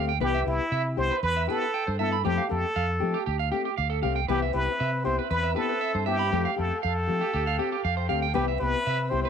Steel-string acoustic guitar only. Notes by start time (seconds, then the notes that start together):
Already playing: A3 C4 G4
0.20 E3 B3 E4, muted steel-string acoustic guitar stroke
0.45 B3 E4 G4
0.97 B3 E4 G4
1.48 B3 E4 G4
2.00 B3 E4
2.24 F3 A3 C4 G4
2.49 A3 C4 G4
3.00 A3 C4 G4
3.52 A3 C4 G4
4.02 A3 C4 G4
4.28 E3 B3 E4 G4
4.54 E4 G4
5.04 B3 E4 G4
5.55 B3 E4 G4
6.06 B3 E4 G4
6.32 F3 A3 C4 G4
6.56 A3 C4 G4
7.07 A3 C4 G4
7.59 C4 G4
8.09 A3 C4 G4
8.34 E3 B3 E4 G4
8.60 B3 E4 G4
9.11 B3 E4 G4